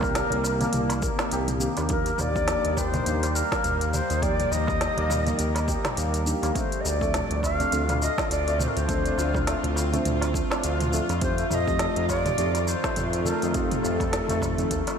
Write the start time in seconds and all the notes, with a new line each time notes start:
Already playing: C2 C3 A#3 D#4 G4 A#4
0.01 D#3 A#3 C4 G4 D5, kick, mid tom, darbuka tek, shaker
0.15 A#3, snare, closed hi-hat, shaker
0.30 C2, closed hi-hat, darbuka dum
0.44 darbuka ka, shaker
0.58 D#3 A#3 C4 D5, closed hi-hat, darbuka dum, shaker
0.62 A5
0.73 C2, closed hi-hat, mid tom, shaker
0.90 closed hi-hat, darbuka ka, darbuka tek, shaker
1.02 A#4, kick, shaker
1.19 D#4, snare, darbuka ka, darbuka tek, shaker
1.31 C2 G4, closed hi-hat, shaker
1.48 closed hi-hat, mid tom, shaker
1.59 D#3 A#3 C4 D4 G4, shaker
1.77 D#2, closed hi-hat, darbuka ka, shaker
1.89 F3 G3 A#3 D4 D#4 G4 A#4, kick, closed hi-hat, shaker
2.06 A#3, closed hi-hat, shaker
2.18 D#2 D5, mid tom, darbuka tek, shaker
2.34 F3 A#3 D4 D#4 G4, kick, shaker
2.48 A#4, snare, closed hi-hat, shaker
2.65 D#2 D#4, closed hi-hat
2.77 G4 C5, kick, darbuka ka, shaker
2.92 F3 A#3 D4 D#4 G4, closed hi-hat, mid tom, darbuka dum, shaker
3.04 D#2 F3 A#3 D4 D#4 G4, closed hi-hat, shaker
3.23 closed hi-hat, darbuka ka, shaker
3.35 A#4, darbuka tek, shaker
3.52 A#3, kick, snare, shaker
3.64 D#2, closed hi-hat, mid tom, shaker
3.81 closed hi-hat, shaker
3.92 A#4 C5, darbuka dum, shaker
4.10 D#2 D#4, closed hi-hat, shaker
4.21 F3 A#3 D#4 G4 A#4 D5, kick, closed hi-hat, shaker
4.40 closed hi-hat, mid tom, shaker
4.51 D#2 A#3 D#5, darbuka tek, shaker
4.67 F3 A#3 D#4 G4 D#5, kick, darbuka tek, shaker
4.81 snare, closed hi-hat, shaker
4.97 D#2 A#3, closed hi-hat, darbuka dum
5.10 mid tom, darbuka ka, shaker
5.26 F3 A#3 D#4 A#4, closed hi-hat, darbuka dum, shaker
5.39 D#2 A#4, closed hi-hat, shaker
5.55 D#4, closed hi-hat, darbuka ka, darbuka tek, shaker
5.67 F3 A#3 D#4 G4 D5, kick, shaker
5.85 snare, closed hi-hat, mid tom, darbuka ka, darbuka tek, shaker
5.97 D#2 A#3, closed hi-hat, shaker
6.14 closed hi-hat, shaker
6.25 F3 A#3 D4 D#4 G4, shaker
6.42 D#2 A#3, closed hi-hat, darbuka ka, shaker
6.54 F3 A3 C4 D4 F4 A4 C5, kick, closed hi-hat, shaker
6.72 closed hi-hat, shaker
6.80 D#5, darbuka tek
6.85 D2 D5, shaker
7.00 F3 A3 C4 D4 A4, kick, shaker
7.14 snare, closed hi-hat, mid tom, shaker
7.30 D2, closed hi-hat
7.43 A4 F5, kick, darbuka ka, shaker
7.58 F3 A3 C4 D4 A4, closed hi-hat, darbuka dum, shaker
7.71 D2 F3 A3 C4 D4 F4 A4, closed hi-hat, shaker
7.89 closed hi-hat, mid tom, darbuka ka, shaker
8.01 A3 D#5, darbuka tek, shaker
8.18 kick, snare, shaker
8.31 D2 D5, closed hi-hat, shaker
8.47 A3, closed hi-hat, shaker
8.59 C5, mid tom, darbuka dum, shaker
8.68 A#4
8.76 D2 C5, closed hi-hat, shaker
8.87 F3 A3 C4 D4 A4, kick, closed hi-hat, shaker
9.05 D4, closed hi-hat, shaker
9.18 D2 F4, darbuka tek, shaker
9.34 F3 A3 C4 D4 A4, kick, mid tom, darbuka tek, shaker
9.47 A3, snare, closed hi-hat, shaker
9.63 D2, closed hi-hat, darbuka dum
9.76 darbuka ka, shaker
9.91 F3 A3 C4 D4 C5, closed hi-hat, darbuka dum, shaker
10.05 D2, closed hi-hat, mid tom, shaker
10.21 closed hi-hat, darbuka ka, darbuka tek, shaker
10.34 A4, kick, shaker
10.50 D4, snare, darbuka ka, darbuka tek, shaker
10.63 D2 F4, closed hi-hat, shaker
10.80 closed hi-hat, mid tom, shaker
10.92 F3 A3 C4 D4 A4, shaker
11.09 F2, closed hi-hat, darbuka ka, shaker
11.21 D#3 F3 A3 C4 D#4 G4 C5, kick, closed hi-hat, shaker
11.38 A3, closed hi-hat, shaker
11.50 F2 D#5 F5, mid tom, darbuka tek, shaker
11.67 F3 A3 C4 D#4 G4, kick, shaker
11.79 A4, snare, closed hi-hat, shaker
11.96 F2 D#4, closed hi-hat
12.08 F4 D5, kick, darbuka ka, shaker
12.25 F3 A3 C4 D#4 G4, closed hi-hat, mid tom, darbuka dum, shaker
12.37 F2 F3 A3 C4 D#4 G4, closed hi-hat, shaker
12.55 closed hi-hat, darbuka ka, shaker
12.67 C5, darbuka tek, shaker
12.84 A3, kick, snare, shaker
12.96 F2, closed hi-hat, mid tom, shaker
13.13 closed hi-hat, shaker
13.25 A4 A#4, darbuka dum, shaker
13.42 F2 D#4, closed hi-hat, shaker
13.49 A#4
13.53 F3 A3 C4 D#4 F4 G4 A4, kick, closed hi-hat, shaker
13.71 closed hi-hat, mid tom, shaker
13.83 F2 A3, darbuka tek, shaker
13.99 F3 A3 C4 D#4 G4, kick, closed hi-hat, darbuka tek, shaker
14.13 snare, closed hi-hat, shaker
14.28 F2 A3, closed hi-hat, darbuka dum, shaker
14.42 kick, mid tom, darbuka ka, shaker
14.57 F3 A3 C4 D#4 A4, closed hi-hat, darbuka dum, shaker
14.71 D#2 A4, kick, closed hi-hat, shaker
14.87 D#4, closed hi-hat, darbuka ka, darbuka tek, shaker